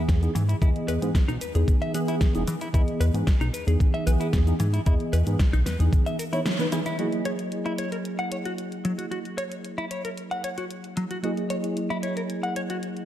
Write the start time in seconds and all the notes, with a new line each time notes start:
Already playing: E3 B3 G#4
0.09 E2, kick, snare, closed hi-hat, shaker
0.22 E3 B3 D#4 G#4, closed hi-hat, shaker
0.35 G#2 E3, open hi-hat, shaker
0.49 E4, closed hi-hat, shaker
0.61 E2 E3 B3 E4 G#4 D#5, kick, closed hi-hat, shaker
0.76 closed hi-hat
0.88 E2 B4, open hi-hat, shaker
1.02 G#2 E3 B3 D#4 G#4, closed hi-hat, shaker
1.15 kick, snare, closed hi-hat, shaker
1.28 B1 D#4, closed hi-hat, shaker
1.41 E2 B4, open hi-hat, shaker
1.55 E2 E3 B3 D#4 G#4, closed hi-hat, shaker
1.68 kick, closed hi-hat, shaker
1.82 E5, closed hi-hat
1.94 E3 B3 G#4 B4, open hi-hat, shaker
2.08 E4, closed hi-hat, shaker
2.21 kick, snare, closed hi-hat, shaker
2.34 E1 E3 B3 D#4 G#4, closed hi-hat, shaker
2.48 E3, open hi-hat, shaker
2.61 E4, closed hi-hat, shaker
2.73 E2 E3 B3 E4 G#4 D#5, kick, closed hi-hat, shaker
2.88 closed hi-hat
3.00 E2 B4, open hi-hat, shaker
3.14 G#2 E3 B3 D#4 G#4, closed hi-hat, shaker
3.27 kick, snare, closed hi-hat, shaker
3.41 B1 D#4, closed hi-hat, shaker
3.53 E2 B4, open hi-hat, shaker
3.67 E2 E3 B3 D#4 G#4, closed hi-hat, shaker
3.80 kick, closed hi-hat, shaker
3.94 E5, closed hi-hat
4.06 B1 E3 B3 G#4 B4, open hi-hat, shaker
4.20 E2 E4, closed hi-hat, shaker
4.33 E2, kick, snare, closed hi-hat, shaker
4.47 E3 B3 D#4 G#4, closed hi-hat, shaker
4.60 G#2 E3, open hi-hat, shaker
4.74 E4, closed hi-hat, shaker
4.86 E2 E3 B3 E4 G#4 D#5, kick, closed hi-hat, shaker
5.00 closed hi-hat
5.13 E2 B4, open hi-hat, shaker
5.26 G#2 E3 B3 D#4 G#4, closed hi-hat, shaker
5.39 kick, snare, closed hi-hat, shaker
5.53 B1 D#4, closed hi-hat, shaker
5.66 E2 B4, snare, open hi-hat, shaker
5.79 E2 E3 B3 D#4 G#4, closed hi-hat, shaker
5.93 kick, closed hi-hat, shaker
6.06 E5, closed hi-hat, shaker
6.19 A#4, open hi-hat, shaker
6.32 E3 B3 D#4 E4 C#5, closed hi-hat, shaker
6.46 snare, closed hi-hat, shaker
6.59 E3 B3 D#4 B4, closed hi-hat, shaker
6.72 E3 B3 D#4 E4 G#4, open hi-hat, shaker
6.86 E4, closed hi-hat, shaker
6.98 F#3 A#3 E4 F#4 G#4 D#5, closed hi-hat
7.12 closed hi-hat
7.25 C#5, closed hi-hat
7.39 closed hi-hat
7.52 closed hi-hat
7.66 E4, closed hi-hat
7.78 C#5, closed hi-hat
7.92 A#4, closed hi-hat
8.05 closed hi-hat
8.19 F#5, closed hi-hat
8.32 C#5, closed hi-hat
8.45 F#4, closed hi-hat
8.58 closed hi-hat
8.72 closed hi-hat
8.85 F#3, closed hi-hat
8.98 F#4, closed hi-hat
9.11 F#4, closed hi-hat
9.25 closed hi-hat
9.38 C#5, closed hi-hat
9.52 closed hi-hat
9.65 closed hi-hat
9.78 E4, closed hi-hat
9.91 C#5, closed hi-hat
10.05 A#4, closed hi-hat
10.17 closed hi-hat
10.31 F#5, closed hi-hat
10.44 C#5, closed hi-hat
10.58 F#4, closed hi-hat
10.71 closed hi-hat
10.84 closed hi-hat
10.97 F#3, closed hi-hat
11.11 F#4, closed hi-hat
11.23 F#3 A#3 E4 F#4 G#4 D#5, closed hi-hat
11.37 closed hi-hat
11.50 C#5, closed hi-hat
11.64 closed hi-hat
11.77 closed hi-hat
11.90 E4, closed hi-hat
12.03 C#5, closed hi-hat
12.17 A#4, closed hi-hat
12.30 closed hi-hat
12.43 F#5, closed hi-hat
12.56 C#5, closed hi-hat
12.70 F#4, closed hi-hat
12.83 closed hi-hat
12.97 closed hi-hat